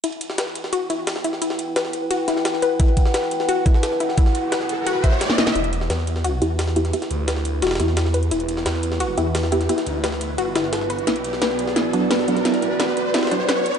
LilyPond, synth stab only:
\new Staff \with { instrumentName = "Synth stab" } { \time 4/4 \key e \minor \tempo 4 = 174 r1 | r1 | r1 | r1 |
r2 r8 <b e' g'>4 <b e' g'>8 | <b e' g'>2~ <b e' g'>8 <b e' g'>8 r4 | r2 r8 <b e' g'>4 <b e' g'>8 | <b e' g'>2~ <b e' g'>8 r4. |
r2 r8 <fis b d'>4 <fis b d'>8 | <fis b d'>2~ <fis b d'>8 <fis b d'>8 r4 | }